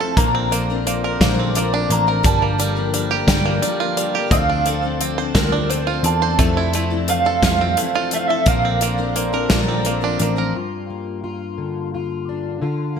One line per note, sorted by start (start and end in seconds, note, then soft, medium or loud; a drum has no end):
0.00 0.12 F1 medium
0.00 0.12 F2 medium
0.00 0.19 E3 medium
0.00 0.17 F3 medium
0.00 0.14 A3 medium
0.00 0.17 A3 medium
0.00 2.20 C4 medium
0.00 0.18 C4 soft
0.00 0.19 E4 medium
0.00 0.17 E4 soft
0.00 0.17 F4 medium
0.00 0.12 A4 medium
0.00 0.19 A4 medium
0.00 0.17 A4 medium
0.00 0.17 C5 loud
0.00 0.17 A5 medium
0.16 1.16 A#1 loud
0.16 0.52 A#2 medium
0.16 10.52 D3 medium
0.16 0.52 D3 medium
0.16 0.48 F3 medium
0.16 0.50 F3 medium
0.16 2.20 A#3 medium
0.16 0.51 A#3 medium
0.16 0.51 C4 medium
0.16 6.35 D4 medium
0.16 0.48 D4 medium
0.16 0.51 D4 medium
0.16 0.48 A#4 medium
0.16 2.22 A#4 medium
0.16 0.51 A#4 medium
0.16 0.48 C5 medium
0.16 0.91 A#5 loud
0.16 kick loud
0.16 closed hi-hat medium
0.35 1.03 C4 medium
0.51 0.68 F3 soft
0.51 0.83 F3 medium
0.51 0.86 A#3 medium
0.51 0.69 C4 medium
0.51 0.82 D4 medium
0.51 0.69 D4 medium
0.51 0.83 A#4 soft
0.51 0.69 A#4 medium
0.51 0.82 C5 medium
0.51 closed hi-hat medium
0.70 1.04 F3 soft
0.70 1.04 C4 soft
0.70 1.03 D4 soft
0.70 1.03 A#4 soft
0.86 1.18 F3 medium
0.86 1.20 A#3 medium
0.86 1.17 D4 medium
0.86 1.17 A#4 medium
0.86 1.17 C5 medium
0.86 closed hi-hat medium
1.04 1.21 F3 soft
1.04 1.21 C4 soft
1.04 1.21 D4 soft
1.04 1.21 A#4 soft
1.04 1.73 A#4 medium
1.20 1.86 A#1 medium
1.20 1.55 A#2 medium
1.20 1.56 D3 medium
1.20 1.52 F3 medium
1.20 1.54 F3 medium
1.20 1.56 A#3 medium
1.20 1.54 C4 medium
1.20 1.52 D4 medium
1.20 1.55 D4 medium
1.20 1.52 A#4 medium
1.20 1.55 A#4 medium
1.20 1.52 C5 medium
1.20 1.53 C5 medium
1.20 kick medium
1.20 snare loud
1.20 closed hi-hat medium
1.39 2.08 C4 medium
1.54 1.86 F3 medium
1.54 1.72 F3 soft
1.54 1.89 A#3 medium
1.54 1.72 C4 medium
1.54 1.86 D4 soft
1.54 1.73 D4 medium
1.54 1.86 A#4 medium
1.54 1.72 A#4 medium
1.54 1.86 C5 medium
1.54 1.91 D5 medium
1.54 closed hi-hat medium
1.73 2.07 F3 soft
1.73 2.07 C4 soft
1.73 2.08 D4 medium
1.73 2.06 D4 soft
1.73 2.05 A#4 medium
1.89 2.21 A1 medium
1.89 2.21 F3 medium
1.89 2.24 A#3 medium
1.89 2.21 D4 medium
1.89 2.21 A#4 medium
1.89 2.21 C5 medium
1.89 2.25 A#5 medium
1.89 closed hi-hat medium
2.07 2.22 F3 soft
2.07 2.23 C4 soft
2.07 2.23 D4 soft
2.07 2.23 A#4 soft
2.07 2.25 A#4 medium
2.23 3.24 G1 medium
2.23 4.28 G1 medium
2.23 2.58 G2 medium
2.23 4.28 G2 medium
2.23 2.58 D3 medium
2.23 2.57 F3 medium
2.23 2.56 F3 medium
2.23 2.58 G3 medium
2.23 4.29 A#3 medium
2.23 2.58 A#3 medium
2.23 2.56 D4 medium
2.23 2.58 D4 medium
2.23 4.29 G4 medium
2.23 2.56 G4 medium
2.23 2.55 A#4 medium
2.23 2.59 A#4 medium
2.23 3.25 A5 medium
2.23 kick loud
2.23 closed hi-hat medium
2.42 3.11 A#3 medium
2.58 2.90 F3 medium
2.58 2.76 F3 medium
2.58 2.93 G3 medium
2.58 2.76 A#3 medium
2.58 2.90 D4 medium
2.58 2.75 D4 medium
2.58 2.90 G4 soft
2.58 2.90 A#4 medium
2.58 2.74 A#4 medium
2.58 closed hi-hat medium
2.75 3.11 F3 soft
2.75 3.11 A#3 soft
2.75 3.10 D4 soft
2.75 3.09 A#4 soft
2.92 3.24 F3 medium
2.92 3.27 G3 medium
2.92 3.25 D4 medium
2.92 3.25 G4 medium
2.92 3.25 C5 medium
2.92 closed hi-hat medium
3.10 3.28 F3 soft
3.10 3.28 A#3 soft
3.10 3.28 D4 soft
3.10 3.80 G4 medium
3.10 3.28 A#4 soft
3.27 3.59 G1 medium
3.27 3.62 G2 medium
3.27 3.63 D3 medium
3.27 3.59 F3 medium
3.27 3.61 F3 medium
3.27 3.61 G3 medium
3.27 3.62 A#3 medium
3.27 3.59 D4 medium
3.27 3.63 D4 medium
3.27 3.59 G4 medium
3.27 3.59 A#4 medium
3.27 3.63 A#4 medium
3.27 3.93 G5 medium
3.27 kick medium
3.27 snare loud
3.27 closed hi-hat medium
3.46 4.14 A#3 medium
3.62 3.94 F3 medium
3.62 3.80 F3 soft
3.62 3.96 G3 medium
3.62 3.80 A#3 medium
3.62 3.94 D4 medium
3.62 3.80 D4 medium
3.62 3.94 G4 medium
3.62 3.94 A#4 medium
3.62 3.79 A#4 medium
3.62 closed hi-hat medium
3.80 4.15 F3 soft
3.80 4.15 A#3 soft
3.80 4.15 D4 soft
3.80 4.32 F4 medium
3.80 4.14 A#4 soft
3.97 4.28 F3 medium
3.97 4.32 G3 medium
3.97 4.28 D4 medium
3.97 4.29 G4 medium
3.97 4.28 A#4 medium
3.97 closed hi-hat medium
4.15 4.31 F3 soft
4.15 4.33 A#3 soft
4.15 4.32 D4 soft
4.15 4.32 G4 medium
4.15 4.32 A#4 medium
4.30 6.35 D2 medium
4.30 5.31 D2 medium
4.30 6.35 D3 medium
4.30 4.66 D3 medium
4.30 4.63 F3 medium
4.30 4.65 F3 medium
4.30 8.42 C4 medium
4.30 4.65 C4 medium
4.30 4.66 C4 medium
4.30 4.63 D4 medium
4.30 4.66 D4 medium
4.30 4.62 A4 medium
4.30 4.67 A4 medium
4.30 4.63 C5 medium
4.30 5.38 F5 medium
4.30 8.43 A5 medium
4.30 kick loud
4.30 closed hi-hat medium
4.49 5.18 D4 medium
4.65 4.97 F3 medium
4.65 4.84 F3 medium
4.65 5.00 C4 medium
4.65 4.83 C4 medium
4.65 4.97 D4 medium
4.65 4.82 D4 medium
4.65 4.97 A4 medium
4.65 4.81 A4 medium
4.65 4.97 C5 medium
4.65 closed hi-hat medium
4.82 5.19 C4 soft
4.82 5.18 D4 soft
4.82 5.17 A4 soft
4.99 5.32 F3 medium
4.99 5.33 C4 medium
4.99 5.32 D4 medium
4.99 5.32 A4 medium
4.99 5.32 C5 medium
4.99 closed hi-hat medium
5.18 5.35 C4 soft
5.18 5.35 D4 soft
5.18 5.35 A4 soft
5.18 5.87 C5 medium
5.34 6.00 D2 medium
5.34 5.70 D3 medium
5.34 5.66 F3 medium
5.34 5.69 F3 medium
5.34 5.68 C4 medium
5.34 5.69 C4 medium
5.34 5.66 D4 medium
5.34 5.70 D4 medium
5.34 5.67 F4 medium
5.34 5.71 A#4 medium
5.34 5.66 C5 medium
5.34 kick medium
5.34 snare loud
5.34 closed hi-hat medium
5.52 6.22 D4 medium
5.70 5.87 F3 medium
5.70 6.02 F3 medium
5.70 6.03 C4 medium
5.70 5.88 C4 medium
5.70 6.02 D4 medium
5.70 5.87 D4 medium
5.70 6.02 A4 medium
5.70 5.86 A4 medium
5.70 6.02 C5 medium
5.70 closed hi-hat medium
5.87 6.22 C4 soft
5.87 6.21 D4 soft
5.87 6.39 F4 medium
5.87 6.20 A4 soft
6.03 6.36 E2 medium
6.03 6.39 C4 medium
6.03 6.36 D4 medium
6.03 6.36 F4 medium
6.03 6.36 A4 medium
6.03 6.36 C5 medium
6.03 7.09 A5 medium
6.03 closed hi-hat medium
6.21 6.38 C4 soft
6.21 6.39 D4 soft
6.21 6.39 A4 soft
6.21 6.39 C5 medium
6.39 8.43 F1 medium
6.39 7.39 F2 loud
6.39 8.43 F2 medium
6.39 6.72 F3 medium
6.39 6.71 F3 medium
6.39 6.74 A3 medium
6.39 6.73 C4 medium
6.39 6.71 E4 medium
6.39 6.74 E4 medium
6.39 6.71 A4 medium
6.39 6.74 A4 medium
6.39 6.71 C5 medium
6.39 kick loud
6.39 closed hi-hat medium
6.57 7.26 E4 medium
6.73 7.05 F3 medium
6.73 6.91 F3 medium
6.73 7.08 A3 medium
6.73 6.91 C4 medium
6.73 7.05 E4 medium
6.73 6.90 E4 medium
6.73 7.05 A4 medium
6.73 6.89 A4 medium
6.73 7.05 D5 medium
6.73 closed hi-hat medium
6.90 7.26 C4 soft
6.90 7.24 E4 soft
6.90 7.24 A4 medium
7.08 7.40 E3 medium
7.08 7.40 F3 medium
7.08 7.43 A3 medium
7.08 7.40 A4 medium
7.08 7.40 C5 medium
7.08 7.41 F5 loud
7.08 closed hi-hat medium
7.25 7.42 C4 soft
7.25 7.43 E4 medium
7.25 7.43 A4 medium
7.25 7.95 A4 medium
7.42 7.74 F2 medium
7.42 7.75 E3 medium
7.42 7.76 F3 medium
7.42 7.75 F3 medium
7.42 7.76 A3 medium
7.42 7.77 C4 medium
7.42 7.74 A4 medium
7.42 7.78 A4 medium
7.42 7.75 C5 medium
7.42 8.14 F5 medium
7.42 kick medium
7.42 snare loud
7.42 closed hi-hat medium
7.61 8.30 C4 medium
7.77 8.09 E3 medium
7.77 8.09 F3 medium
7.77 7.95 F3 medium
7.77 8.12 A3 medium
7.77 7.95 C4 medium
7.77 7.94 E4 medium
7.77 8.09 A4 medium
7.77 7.93 A4 medium
7.77 8.09 C5 medium
7.77 closed hi-hat medium
7.94 8.30 C4 soft
7.94 8.29 E4 soft
7.94 8.47 F4 medium
7.94 8.28 A4 soft
8.11 8.44 F3 medium
8.11 8.47 A3 medium
8.11 8.44 E4 medium
8.11 8.44 A4 medium
8.11 8.44 C5 medium
8.11 8.19 E5 medium
8.11 closed hi-hat medium
8.19 8.26 F5 medium
8.28 8.45 C4 soft
8.28 8.46 E4 soft
8.28 8.47 A4 soft
8.28 8.47 A4 medium
8.28 8.48 E5 medium
8.46 9.47 A#1 medium
8.46 8.81 A#2 medium
8.46 8.81 D3 medium
8.46 8.78 F3 medium
8.46 8.79 F3 medium
8.46 10.51 A#3 medium
8.46 8.81 A#3 medium
8.46 8.80 C4 medium
8.46 10.53 C4 medium
8.46 10.53 D4 medium
8.46 8.79 D4 medium
8.46 8.81 D4 medium
8.46 8.78 A#4 medium
8.46 8.82 A#4 medium
8.46 10.53 A#4 medium
8.46 8.78 C5 medium
8.46 10.17 F5 medium
8.46 kick loud
8.46 closed hi-hat medium
8.65 9.34 C4 medium
8.81 8.99 F3 medium
8.81 9.13 F3 medium
8.81 9.15 A#3 medium
8.81 8.98 C4 medium
8.81 9.13 D4 medium
8.81 8.97 D4 medium
8.81 9.13 A#4 medium
8.81 8.96 A#4 medium
8.81 9.13 C5 medium
8.81 closed hi-hat medium
8.98 9.34 F3 soft
8.98 9.33 C4 soft
8.98 9.33 D4 soft
8.98 9.31 A#4 soft
9.16 9.48 F3 medium
9.16 9.50 A#3 medium
9.16 9.48 D4 medium
9.16 9.48 A#4 medium
9.16 9.48 C5 medium
9.16 closed hi-hat medium
9.33 9.50 F3 soft
9.33 9.50 C4 medium
9.33 9.51 D4 medium
9.33 9.50 A#4 medium
9.33 10.03 A#4 medium
9.50 10.16 A#1 medium
9.50 9.86 A#2 medium
9.50 9.86 D3 medium
9.50 9.84 F3 medium
9.50 9.83 F3 medium
9.50 9.85 A#3 medium
9.50 9.84 C4 medium
9.50 9.83 D4 medium
9.50 9.85 D4 medium
9.50 9.85 A#4 medium
9.50 9.83 A#4 medium
9.50 9.83 C5 medium
9.50 kick medium
9.50 snare loud
9.50 closed hi-hat medium
9.68 10.38 C4 medium
9.85 10.01 F3 medium
9.85 10.17 F3 medium
9.85 10.20 A#3 medium
9.85 10.01 C4 medium
9.85 10.18 D4 medium
9.85 10.00 D4 medium
9.85 10.17 A#4 medium
9.85 10.00 A#4 medium
9.85 10.18 C5 medium
9.85 closed hi-hat medium
10.01 10.37 F3 soft
10.01 10.36 C4 soft
10.01 10.36 D4 soft
10.01 10.56 D4 medium
10.01 10.34 A#4 medium
10.19 10.52 A1 medium
10.19 10.52 F3 medium
10.19 10.56 A#3 medium
10.19 10.52 D4 medium
10.19 10.52 A#4 medium
10.19 10.52 C5 medium
10.19 closed hi-hat medium
10.36 10.55 F3 soft
10.36 10.55 C4 soft
10.36 10.55 D4 soft
10.36 10.54 A#4 soft
10.36 10.55 A#4 medium
10.55 12.60 G2 medium
10.55 11.23 F4 soft
10.90 12.64 A#3 soft
11.24 11.94 F4 soft
11.58 12.59 D3 soft
11.94 12.62 F4 soft
12.29 12.60 D4 soft
12.62 13.00 D3 medium
12.62 13.00 F4 soft
12.97 13.00 A#3 soft